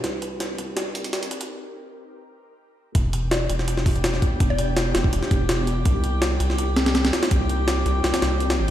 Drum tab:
HH |x-x-x-x-x-xxxxxx|----------------|x-x-x-x-x-oxx-x-|x-x-x-x-x-x-x-x-|
SD |o---o---o---o---|----------------|----o--o-o--oo--|----o-o--o--o---|
BD |----------------|----------------|o---------o---o-|o------o--o-----|

HH |x-x-x-x-x-xxxxxx|x-x-x-x-xxx-xx--|
SD |----o--o--oooooo|----o---ooo--o--|
BD |o---------------|o---------------|